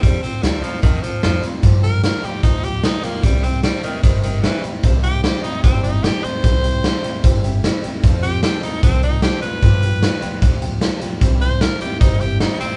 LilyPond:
<<
  \new Staff \with { instrumentName = "Steel-string acoustic guitar" } { \time 4/4 \key c \major \tempo 4 = 150 <f c' f' a'>8 <c' f' a'>8 <f c' f' a'>8 <c' f' a'>8 <f c' f' a'>8 <c' f' a'>8 <f c' f' a'>8 <c' f' a'>8 | <g, d f b f' g'>8 <f b f' g'>8 <f b f' g'>8 <f b f' g'>8 <g, d f b f' g'>8 <f b f' g'>8 <f b f' g'>8 <f b f' g'>8 | <c g c' e' g'>8 <c' e' g'>8 <g c' e' g'>8 <c' e' g'>8 <c g c' e' g'>8 <c' e' g'>8 <g c' e' g'>8 <c' e' g'>8 | <c g c' e' g'>8 <c' e' g'>8 <g c' e' g'>8 <c' e' g'>8 <c g c' e' g'>8 <c' e' g'>8 <g c' e' g'>8 <c' e' g'>8 |
<c g c' e' g'>8 <c' e' g'>8 <g c' e' g'>8 <c' e' g'>8 <c g c' e' g'>8 <c' e' g'>8 <g c' e' g'>8 <c' e' g'>8 | <f c' f' a'>8 <c' f' a'>8 <f c' f' a'>8 <c' f' a'>8 <f c' f' a'>8 <c' f' a'>8 <f c' f' a'>8 <c' f' a'>8 | <g, d f b f' g'>8 <f b f' g'>8 <f b f' g'>8 <f b f' g'>8 <g, d f b f' g'>8 <f b f' g'>8 <f b f' g'>8 <f b f' g'>8 | <c g c' e' g'>8 <c' e' g'>8 <g c' e' g'>8 <c' e' g'>8 <c g c' e' g'>8 <c' e' g'>8 <g c' e' g'>8 <c' e' g'>8 | }
  \new Staff \with { instrumentName = "Tenor saxophone" } { \time 4/4 \key c \major g8 c'8 g8 f8 ees8 f8 f8 r8 | r8 bes'8 bes'8 g'8 ees'8 g'8 ees'8 bes8 | g8 c'8 g8 ees8 ees8 ees8 e8 r8 | r8 g'8 g'8 ees'8 c'8 ees'8 g'8 c''8~ |
c''2~ c''8 r4. | r8 g'8 g'8 ees'8 c'8 ees'8 g'8 b'8~ | b'2~ b'8 r4. | r8 c''8 bes'8 g'8 ees'8 g'8 ees'8 c'8 | }
  \new Staff \with { instrumentName = "Upright bass" } { \clef bass \time 4/4 \key c \major f,8 r8 d,8 r8 e,8 r8 f,8 r8 | g,4. r8 d,4. r8 | c,4. r8 g,,4. r8 | c,4. r8 g,,4. r8 |
c,4. r8 g,,4. r8 | f,4. r8 c,4. r8 | g,4. r8 d,4. r8 | c,4. r8 g,,4. r8 | }
  \new DrumStaff \with { instrumentName = "Drums" } \drummode { \time 4/4 <hh bd>8 hh8 <hh sn>8 hh8 <hh bd>8 hh8 <hh sn>8 hh8 | <hh bd>8 hh8 <hh sn>8 hh8 <hh bd>8 hh8 <hh sn>8 hh8 | <hh bd>8 hh8 <hh sn>8 hh8 <hh bd>8 hh8 <hh sn>8 hh8 | <hh bd>8 hh8 <hh sn>8 hh8 <hh bd>8 hh8 <hh sn>8 hh8 |
<hh bd>8 hh8 <hh sn>8 hh8 <hh bd>8 hh8 <hh sn>8 hh8 | <hh bd>8 hh8 <hh sn>8 hh8 <hh bd>8 hh8 <hh sn>8 hh8 | <hh bd>8 hh8 <hh sn>8 hh8 <hh bd>8 hh8 <hh sn>8 hh8 | <hh bd>8 hh8 <hh sn>8 hh8 <hh bd>8 hh8 <hh sn>8 hh8 | }
>>